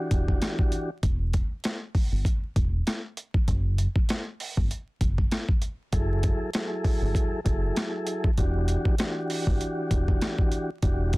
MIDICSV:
0, 0, Header, 1, 4, 480
1, 0, Start_track
1, 0, Tempo, 612245
1, 809, Time_signature, 4, 2, 24, 8
1, 8763, End_track
2, 0, Start_track
2, 0, Title_t, "Tonewheel organ"
2, 0, Program_c, 0, 16
2, 0, Note_on_c, 0, 52, 87
2, 0, Note_on_c, 0, 62, 83
2, 0, Note_on_c, 0, 66, 83
2, 0, Note_on_c, 0, 67, 93
2, 704, Note_off_c, 0, 52, 0
2, 706, Note_off_c, 0, 62, 0
2, 707, Note_off_c, 0, 66, 0
2, 709, Note_off_c, 0, 67, 0
2, 4644, Note_on_c, 0, 54, 92
2, 4646, Note_on_c, 0, 64, 92
2, 4649, Note_on_c, 0, 68, 86
2, 4653, Note_on_c, 0, 69, 101
2, 5092, Note_off_c, 0, 54, 0
2, 5093, Note_off_c, 0, 64, 0
2, 5095, Note_off_c, 0, 68, 0
2, 5097, Note_off_c, 0, 69, 0
2, 5134, Note_on_c, 0, 54, 89
2, 5136, Note_on_c, 0, 64, 81
2, 5140, Note_on_c, 0, 68, 81
2, 5143, Note_on_c, 0, 69, 107
2, 5801, Note_off_c, 0, 54, 0
2, 5802, Note_off_c, 0, 64, 0
2, 5804, Note_off_c, 0, 68, 0
2, 5805, Note_off_c, 0, 69, 0
2, 5835, Note_on_c, 0, 54, 88
2, 5839, Note_on_c, 0, 64, 80
2, 5842, Note_on_c, 0, 68, 85
2, 5845, Note_on_c, 0, 69, 99
2, 6511, Note_off_c, 0, 54, 0
2, 6513, Note_off_c, 0, 64, 0
2, 6515, Note_off_c, 0, 68, 0
2, 6516, Note_off_c, 0, 69, 0
2, 6567, Note_on_c, 0, 52, 86
2, 6571, Note_on_c, 0, 62, 90
2, 6574, Note_on_c, 0, 66, 87
2, 6577, Note_on_c, 0, 67, 104
2, 7014, Note_off_c, 0, 52, 0
2, 7016, Note_off_c, 0, 62, 0
2, 7018, Note_off_c, 0, 66, 0
2, 7019, Note_off_c, 0, 67, 0
2, 7043, Note_on_c, 0, 52, 88
2, 7046, Note_on_c, 0, 62, 81
2, 7048, Note_on_c, 0, 66, 82
2, 7052, Note_on_c, 0, 67, 100
2, 8384, Note_off_c, 0, 52, 0
2, 8386, Note_off_c, 0, 62, 0
2, 8387, Note_off_c, 0, 66, 0
2, 8389, Note_off_c, 0, 67, 0
2, 8487, Note_on_c, 0, 52, 93
2, 8491, Note_on_c, 0, 62, 89
2, 8494, Note_on_c, 0, 66, 87
2, 8497, Note_on_c, 0, 67, 97
2, 8763, Note_off_c, 0, 52, 0
2, 8763, Note_off_c, 0, 62, 0
2, 8763, Note_off_c, 0, 66, 0
2, 8763, Note_off_c, 0, 67, 0
2, 8763, End_track
3, 0, Start_track
3, 0, Title_t, "Fingered electric bass"
3, 0, Program_c, 1, 33
3, 87, Note_on_c, 1, 28, 85
3, 274, Note_off_c, 1, 28, 0
3, 808, Note_on_c, 1, 28, 99
3, 1099, Note_off_c, 1, 28, 0
3, 1662, Note_on_c, 1, 31, 80
3, 1745, Note_off_c, 1, 31, 0
3, 2008, Note_on_c, 1, 28, 93
3, 2195, Note_off_c, 1, 28, 0
3, 2728, Note_on_c, 1, 30, 102
3, 3019, Note_off_c, 1, 30, 0
3, 3585, Note_on_c, 1, 31, 88
3, 3666, Note_off_c, 1, 31, 0
3, 3926, Note_on_c, 1, 30, 88
3, 4114, Note_off_c, 1, 30, 0
3, 4648, Note_on_c, 1, 30, 111
3, 4939, Note_off_c, 1, 30, 0
3, 5501, Note_on_c, 1, 31, 82
3, 5584, Note_off_c, 1, 31, 0
3, 5847, Note_on_c, 1, 30, 89
3, 6034, Note_off_c, 1, 30, 0
3, 6567, Note_on_c, 1, 28, 100
3, 6859, Note_off_c, 1, 28, 0
3, 7425, Note_on_c, 1, 31, 87
3, 7506, Note_off_c, 1, 31, 0
3, 7767, Note_on_c, 1, 28, 89
3, 7954, Note_off_c, 1, 28, 0
3, 8489, Note_on_c, 1, 28, 101
3, 8763, Note_off_c, 1, 28, 0
3, 8763, End_track
4, 0, Start_track
4, 0, Title_t, "Drums"
4, 86, Note_on_c, 9, 42, 75
4, 87, Note_on_c, 9, 36, 91
4, 165, Note_off_c, 9, 36, 0
4, 165, Note_off_c, 9, 42, 0
4, 223, Note_on_c, 9, 36, 97
4, 301, Note_off_c, 9, 36, 0
4, 326, Note_on_c, 9, 42, 77
4, 331, Note_on_c, 9, 38, 112
4, 334, Note_on_c, 9, 37, 94
4, 405, Note_off_c, 9, 42, 0
4, 410, Note_off_c, 9, 38, 0
4, 413, Note_off_c, 9, 37, 0
4, 461, Note_on_c, 9, 36, 103
4, 539, Note_off_c, 9, 36, 0
4, 563, Note_on_c, 9, 42, 69
4, 642, Note_off_c, 9, 42, 0
4, 807, Note_on_c, 9, 42, 84
4, 808, Note_on_c, 9, 36, 104
4, 885, Note_off_c, 9, 42, 0
4, 886, Note_off_c, 9, 36, 0
4, 1046, Note_on_c, 9, 42, 73
4, 1050, Note_on_c, 9, 36, 84
4, 1124, Note_off_c, 9, 42, 0
4, 1128, Note_off_c, 9, 36, 0
4, 1284, Note_on_c, 9, 42, 91
4, 1295, Note_on_c, 9, 38, 114
4, 1298, Note_on_c, 9, 37, 89
4, 1363, Note_off_c, 9, 42, 0
4, 1373, Note_off_c, 9, 38, 0
4, 1376, Note_off_c, 9, 37, 0
4, 1527, Note_on_c, 9, 36, 101
4, 1530, Note_on_c, 9, 46, 52
4, 1605, Note_off_c, 9, 36, 0
4, 1608, Note_off_c, 9, 46, 0
4, 1764, Note_on_c, 9, 36, 100
4, 1771, Note_on_c, 9, 42, 79
4, 1842, Note_off_c, 9, 36, 0
4, 1850, Note_off_c, 9, 42, 0
4, 2007, Note_on_c, 9, 36, 91
4, 2007, Note_on_c, 9, 42, 75
4, 2085, Note_off_c, 9, 36, 0
4, 2086, Note_off_c, 9, 42, 0
4, 2249, Note_on_c, 9, 42, 74
4, 2253, Note_on_c, 9, 38, 112
4, 2256, Note_on_c, 9, 37, 87
4, 2327, Note_off_c, 9, 42, 0
4, 2332, Note_off_c, 9, 38, 0
4, 2335, Note_off_c, 9, 37, 0
4, 2486, Note_on_c, 9, 42, 70
4, 2564, Note_off_c, 9, 42, 0
4, 2621, Note_on_c, 9, 36, 92
4, 2699, Note_off_c, 9, 36, 0
4, 2727, Note_on_c, 9, 42, 87
4, 2728, Note_on_c, 9, 36, 102
4, 2805, Note_off_c, 9, 42, 0
4, 2806, Note_off_c, 9, 36, 0
4, 2967, Note_on_c, 9, 42, 75
4, 3045, Note_off_c, 9, 42, 0
4, 3102, Note_on_c, 9, 36, 96
4, 3180, Note_off_c, 9, 36, 0
4, 3205, Note_on_c, 9, 42, 92
4, 3216, Note_on_c, 9, 38, 115
4, 3219, Note_on_c, 9, 37, 91
4, 3284, Note_off_c, 9, 42, 0
4, 3295, Note_off_c, 9, 38, 0
4, 3297, Note_off_c, 9, 37, 0
4, 3450, Note_on_c, 9, 46, 55
4, 3528, Note_off_c, 9, 46, 0
4, 3585, Note_on_c, 9, 36, 87
4, 3663, Note_off_c, 9, 36, 0
4, 3691, Note_on_c, 9, 42, 79
4, 3769, Note_off_c, 9, 42, 0
4, 3926, Note_on_c, 9, 42, 74
4, 3927, Note_on_c, 9, 36, 90
4, 4005, Note_off_c, 9, 36, 0
4, 4005, Note_off_c, 9, 42, 0
4, 4063, Note_on_c, 9, 36, 96
4, 4142, Note_off_c, 9, 36, 0
4, 4167, Note_on_c, 9, 42, 76
4, 4172, Note_on_c, 9, 38, 110
4, 4175, Note_on_c, 9, 37, 90
4, 4246, Note_off_c, 9, 42, 0
4, 4250, Note_off_c, 9, 38, 0
4, 4253, Note_off_c, 9, 37, 0
4, 4301, Note_on_c, 9, 36, 100
4, 4380, Note_off_c, 9, 36, 0
4, 4404, Note_on_c, 9, 42, 68
4, 4482, Note_off_c, 9, 42, 0
4, 4645, Note_on_c, 9, 42, 84
4, 4648, Note_on_c, 9, 36, 101
4, 4724, Note_off_c, 9, 42, 0
4, 4726, Note_off_c, 9, 36, 0
4, 4885, Note_on_c, 9, 42, 75
4, 4890, Note_on_c, 9, 36, 89
4, 4963, Note_off_c, 9, 42, 0
4, 4968, Note_off_c, 9, 36, 0
4, 5123, Note_on_c, 9, 42, 93
4, 5133, Note_on_c, 9, 38, 112
4, 5136, Note_on_c, 9, 37, 90
4, 5201, Note_off_c, 9, 42, 0
4, 5212, Note_off_c, 9, 38, 0
4, 5215, Note_off_c, 9, 37, 0
4, 5366, Note_on_c, 9, 36, 98
4, 5369, Note_on_c, 9, 46, 55
4, 5445, Note_off_c, 9, 36, 0
4, 5447, Note_off_c, 9, 46, 0
4, 5604, Note_on_c, 9, 36, 100
4, 5611, Note_on_c, 9, 42, 80
4, 5683, Note_off_c, 9, 36, 0
4, 5690, Note_off_c, 9, 42, 0
4, 5846, Note_on_c, 9, 42, 73
4, 5847, Note_on_c, 9, 36, 91
4, 5925, Note_off_c, 9, 36, 0
4, 5925, Note_off_c, 9, 42, 0
4, 6087, Note_on_c, 9, 42, 76
4, 6092, Note_on_c, 9, 38, 118
4, 6095, Note_on_c, 9, 37, 89
4, 6166, Note_off_c, 9, 42, 0
4, 6171, Note_off_c, 9, 38, 0
4, 6173, Note_off_c, 9, 37, 0
4, 6323, Note_on_c, 9, 42, 69
4, 6402, Note_off_c, 9, 42, 0
4, 6461, Note_on_c, 9, 36, 92
4, 6539, Note_off_c, 9, 36, 0
4, 6566, Note_on_c, 9, 42, 87
4, 6568, Note_on_c, 9, 36, 102
4, 6644, Note_off_c, 9, 42, 0
4, 6646, Note_off_c, 9, 36, 0
4, 6805, Note_on_c, 9, 42, 74
4, 6883, Note_off_c, 9, 42, 0
4, 6941, Note_on_c, 9, 36, 92
4, 7020, Note_off_c, 9, 36, 0
4, 7044, Note_on_c, 9, 42, 92
4, 7055, Note_on_c, 9, 38, 116
4, 7058, Note_on_c, 9, 37, 88
4, 7122, Note_off_c, 9, 42, 0
4, 7133, Note_off_c, 9, 38, 0
4, 7136, Note_off_c, 9, 37, 0
4, 7291, Note_on_c, 9, 46, 53
4, 7369, Note_off_c, 9, 46, 0
4, 7425, Note_on_c, 9, 36, 88
4, 7503, Note_off_c, 9, 36, 0
4, 7532, Note_on_c, 9, 42, 81
4, 7610, Note_off_c, 9, 42, 0
4, 7768, Note_on_c, 9, 36, 88
4, 7768, Note_on_c, 9, 42, 73
4, 7846, Note_off_c, 9, 36, 0
4, 7847, Note_off_c, 9, 42, 0
4, 7904, Note_on_c, 9, 36, 94
4, 7983, Note_off_c, 9, 36, 0
4, 8008, Note_on_c, 9, 42, 73
4, 8013, Note_on_c, 9, 38, 114
4, 8016, Note_on_c, 9, 37, 91
4, 8087, Note_off_c, 9, 42, 0
4, 8091, Note_off_c, 9, 38, 0
4, 8094, Note_off_c, 9, 37, 0
4, 8142, Note_on_c, 9, 36, 105
4, 8220, Note_off_c, 9, 36, 0
4, 8245, Note_on_c, 9, 42, 69
4, 8323, Note_off_c, 9, 42, 0
4, 8487, Note_on_c, 9, 42, 87
4, 8488, Note_on_c, 9, 36, 103
4, 8565, Note_off_c, 9, 42, 0
4, 8567, Note_off_c, 9, 36, 0
4, 8726, Note_on_c, 9, 42, 72
4, 8731, Note_on_c, 9, 36, 89
4, 8763, Note_off_c, 9, 36, 0
4, 8763, Note_off_c, 9, 42, 0
4, 8763, End_track
0, 0, End_of_file